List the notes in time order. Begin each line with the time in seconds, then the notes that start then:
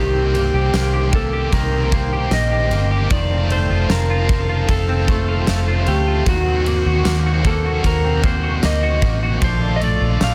Already playing: C2 C3 D#3 A#3 C4 G4 C5 G5
0.14 C4
0.34 A#3 C4 G4, ride
0.54 C2 G4
0.73 C2 D#3 A#3 C4 G4, snare, ride, tambourine
0.94 G4
1.13 A#3 C4 G4 A4, kick, ride
1.17 A#3
1.33 G4
1.52 C2 C3 D#3 A#3 C4 G4 A#4, kick, ride
1.72 C4
1.91 A#3 C4 G4 C5, kick, ride
2.12 G4
2.31 A#1 D#3 A#3 C4 D#5, snare, ride, tambourine
2.35 G4
2.51 G4
2.70 G1 A#3 C4 G4, ride
2.91 G4
3.09 F1 F2 C3 D#3 A3 C4 F4 D5 F5 A5, kick, ride
3.31 C4
3.49 D#3 A3 C4 F4 C5, ride
3.70 F1 F4
3.88 F1 D#3 C4 A#4, snare, ride, tambourine
3.93 F4
4.10 F4
4.29 D#3 C4 F4, kick, ride
4.49 F4
4.69 F1 F2 C3 D#3 A3 C4 F4 A4, kick, ride
4.88 C4
5.08 D#3 A3 C4 F4, kick, ride
5.28 F4
5.46 F1 D#3 A3 C4 F4, snare, ride, tambourine
5.68 F4
5.85 D2 A3 C4 F4 G4, ride
6.07 F4
6.25 D#2 D#3 A#3 C4 F#4 F#5, kick, ride
6.47 C4
6.64 A#3 C4 F#4, ride
6.86 D#2 F#4
7.04 D#2 D#3 A#3 C4 F#4, snare, ride, tambourine
7.26 F#4
7.43 A#3 C4 F#4 A4, kick, ride
7.66 F#4
7.83 D#2 D#3 A#3 C4 F#4 A#4, kick, ride
8.05 C4
8.22 A#3 C4 F#4 C5, kick, ride
8.43 F#4
8.63 D2 A#3 C4 F#4 D#5, snare, ride, tambourine
8.83 F#4
9.02 A1 A#3 C4 F#4, kick, ride
9.23 F#4
9.41 A#1 A#2 F3 A3 D4 F4 A4 C5 F5 D6, kick, ride
9.61 D4
9.76 D#5
9.81 A3 D4 F4 D5, ride
10.00 A#1 F4
10.20 A#1 F3 A3 D4 F4 F5, snare, ride, tambourine